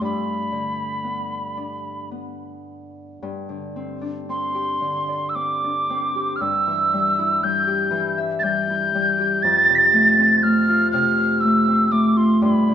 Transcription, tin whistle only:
0.04 2.09 B5 medium
4.30 5.31 C6 medium
5.29 5.37 E6 medium
5.35 6.37 D6 medium
6.36 6.42 F6 medium
6.41 7.45 E6 medium
7.43 8.19 G6 medium
8.39 9.44 G6 loud
8.39 8.45 A6 medium
9.43 9.77 A6 loud
9.75 10.09 A6 loud
9.75 9.79 B6 medium
10.09 10.44 A6 loud
10.43 10.91 F6 loud
10.92 11.42 F6 loud
11.40 11.93 E6 medium
11.92 12.18 D6 medium
12.17 12.43 C6 medium
12.43 12.74 B5 medium

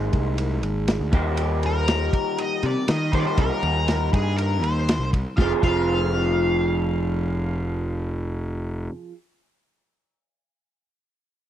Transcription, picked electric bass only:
0.13 0.63 C2 medium
0.63 0.98 G#1 medium
1.00 1.12 D2 medium
1.13 2.09 D#2 loud
2.63 2.75 C3 loud
2.89 3.11 D#3 medium
3.13 3.25 D#3 medium
3.38 3.50 C2 medium
3.63 4.09 D#2 medium
4.13 4.62 G2 medium
4.62 4.97 D#2 medium
4.99 5.23 C2 medium
5.38 5.52 F1 medium
5.63 8.87 F1 medium

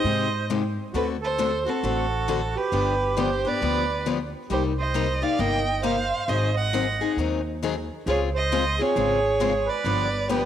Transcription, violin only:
0.00 0.46 D#5 medium
0.96 1.08 B4 medium
1.24 1.71 C5 medium
1.69 2.59 A4 medium
2.58 3.22 B4 medium
3.20 3.50 C5 medium
3.48 4.07 D5 medium
4.53 4.65 C5 medium
4.80 5.24 D#5 medium
5.23 5.41 F5 medium
5.40 5.84 G5 loud
5.84 6.30 F5 medium
6.29 6.56 D#5 medium
6.57 7.14 F#5 medium
8.10 8.21 C#5 loud
8.37 8.83 D#5 loud
8.82 9.71 C#5 loud
9.69 10.32 D5 loud
10.30 10.45 B4 medium

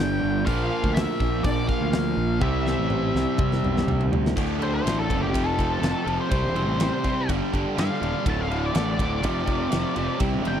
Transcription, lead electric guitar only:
0.00 0.50 G5 medium
0.46 0.94 F5 loud
0.94 1.44 E5 medium
1.44 1.68 D5 medium
1.68 2.42 F5 medium
2.42 4.08 E5 medium
4.63 4.74 C5 medium
4.75 4.98 C5 medium
4.99 5.22 A4 medium
5.22 5.46 G4 medium
5.46 6.17 A4 medium
6.21 6.79 C5 medium
6.83 7.29 C5 medium
7.80 8.26 F5 medium
8.30 8.40 A5 medium
8.41 8.63 F5 medium
8.66 8.76 D5 medium
8.77 10.18 D5 medium
10.48 10.60 G5 loud

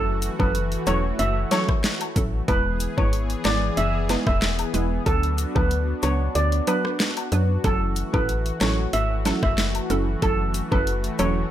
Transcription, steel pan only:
0.00 0.14 A4 loud
0.40 0.51 B4 medium
0.87 1.00 C#5 medium
1.19 1.32 E5 medium
1.51 1.64 C#5 medium
2.48 2.72 B4 loud
2.98 3.09 C#5 medium
3.45 3.58 D5 medium
3.77 3.90 E5 medium
4.27 4.38 E5 medium
5.06 5.30 A4 loud
5.56 5.67 B4 medium
6.03 6.16 C#5 medium
6.35 6.48 D5 medium
6.68 6.80 B4 medium
7.64 7.88 A4 loud
8.14 8.25 B4 medium
8.61 8.74 C#5 medium
8.93 9.06 E5 medium
9.43 9.54 E5 medium
10.22 10.46 A4 loud
10.72 10.83 B4 medium
11.19 11.32 C#5 medium

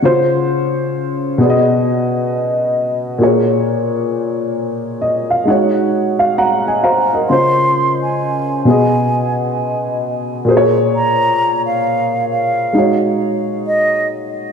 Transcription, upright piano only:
0.02 1.38 C#3 medium
0.02 1.39 C#4 medium
0.02 1.39 F4 medium
0.02 1.40 C5 medium
1.38 3.16 B2 medium
1.38 3.17 B3 medium
1.38 3.18 G#4 medium
1.43 1.48 D5 medium
1.50 3.22 D#5 medium
3.18 5.42 A#2 medium
3.18 5.43 A#3 medium
3.18 5.44 G#4 medium
3.23 5.45 C#5 medium
5.01 5.27 D#5 medium
5.30 5.47 F5 medium
5.45 7.24 G#3 medium
5.45 7.25 D#4 medium
5.45 7.26 F#4 medium
5.45 6.16 F#5 medium
5.50 6.38 C#5 medium
6.19 6.37 F5 medium
6.38 6.64 F5 medium
6.38 6.63 F#5 medium
6.38 6.64 A#5 medium
6.67 6.84 D#5 soft
6.67 6.84 G#5 medium
6.83 7.09 C5 medium
6.83 7.09 F5 medium
6.83 7.26 A#5 medium
7.14 7.56 A#4 soft
7.14 7.55 D#5 medium
7.30 8.66 C#3 medium
7.30 8.66 C#4 medium
7.30 8.67 F4 medium
7.30 8.67 C5 medium
8.65 10.43 B2 medium
8.65 10.44 B3 medium
8.65 10.45 G#4 medium
8.70 10.46 D#5 medium
10.45 12.69 A#2 medium
10.45 12.70 A#3 medium
10.45 12.71 G#4 medium
10.50 10.56 C5 medium
10.57 12.75 C#5 medium
12.73 14.52 G#3 medium
12.73 14.52 D#4 medium
12.73 14.52 F#4 medium
12.78 14.52 C#5 medium

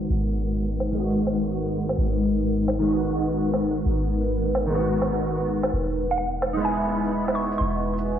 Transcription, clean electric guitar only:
0.00 0.89 D#3 medium
0.00 0.90 G#3 medium
0.00 0.92 B3 medium
0.00 0.93 F#4 medium
0.91 2.77 D#3 medium
0.91 2.78 G#3 medium
0.96 2.80 B3 medium
0.96 2.81 F#4 medium
2.79 4.65 D#3 medium
2.79 4.66 G#3 medium
2.84 4.67 B3 medium
2.84 4.68 F#4 medium
4.66 5.69 D#3 medium
4.66 5.70 G#3 medium
4.71 5.72 B3 medium
4.71 5.73 F#4 loud
6.53 8.19 G#3 medium
6.53 8.19 D#4 medium
6.59 8.19 B3 medium
6.59 8.19 E4 loud

